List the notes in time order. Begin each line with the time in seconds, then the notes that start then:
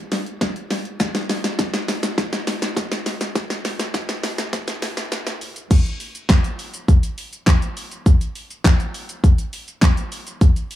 0.12 snare, open hi-hat
0.26 closed hi-hat
0.41 kick, snare, closed hi-hat
0.56 closed hi-hat
0.70 snare, open hi-hat
0.85 closed hi-hat
1.00 kick, snare, closed hi-hat, shaker
1.15 snare, closed hi-hat, shaker
1.29 snare, open hi-hat, shaker
1.44 snare, closed hi-hat, shaker
1.59 kick, snare, closed hi-hat, shaker
1.74 snare, closed hi-hat, shaker
1.88 snare, open hi-hat, shaker
2.03 snare, closed hi-hat, shaker
2.18 kick, snare, closed hi-hat, shaker
2.33 snare, closed hi-hat, shaker
2.47 snare, open hi-hat, shaker
2.62 snare, closed hi-hat, shaker
2.77 kick, snare, closed hi-hat, shaker
2.92 snare, closed hi-hat, shaker
3.06 snare, open hi-hat, shaker
3.21 snare, closed hi-hat, shaker
3.35 kick, snare, closed hi-hat, shaker
3.50 snare, closed hi-hat, shaker
3.65 snare, open hi-hat, shaker
3.79 snare, closed hi-hat, shaker
3.94 kick, snare, closed hi-hat, shaker
4.09 snare, closed hi-hat, shaker
4.23 snare, open hi-hat, shaker
4.38 snare, closed hi-hat, shaker
4.53 kick, snare, closed hi-hat, shaker
4.68 snare, closed hi-hat, shaker
4.82 snare, open hi-hat, shaker
4.97 snare, closed hi-hat, shaker
5.12 snare, closed hi-hat, shaker
5.27 snare, closed hi-hat, shaker
5.41 open hi-hat, shaker
5.56 closed hi-hat, shaker
5.71 kick, closed hi-hat, crash, shaker
5.86 closed hi-hat, shaker
6.00 open hi-hat, shaker
6.15 closed hi-hat, shaker
6.29 kick, snare, clap, closed hi-hat, shaker
6.44 closed hi-hat, shaker
6.59 open hi-hat, shaker
6.74 closed hi-hat, shaker
6.88 kick, closed hi-hat, shaker
7.03 closed hi-hat, shaker
7.18 open hi-hat, shaker
7.33 closed hi-hat, shaker
7.47 kick, snare, clap, closed hi-hat, shaker
7.62 closed hi-hat, shaker
7.77 open hi-hat, shaker
7.91 closed hi-hat, shaker
8.06 kick, closed hi-hat, shaker
8.21 closed hi-hat, shaker
8.35 open hi-hat, shaker
8.50 closed hi-hat, shaker
8.65 kick, snare, clap, closed hi-hat, shaker
8.80 closed hi-hat, shaker
8.94 open hi-hat, shaker
9.09 closed hi-hat, shaker
9.24 kick, closed hi-hat, shaker
9.38 closed hi-hat, shaker
9.53 open hi-hat, shaker
9.68 closed hi-hat, shaker
9.82 kick, snare, clap, closed hi-hat, shaker
9.97 closed hi-hat, shaker
10.12 open hi-hat, shaker
10.27 closed hi-hat, shaker
10.41 kick, closed hi-hat, shaker
10.56 closed hi-hat, shaker
10.71 open hi-hat, shaker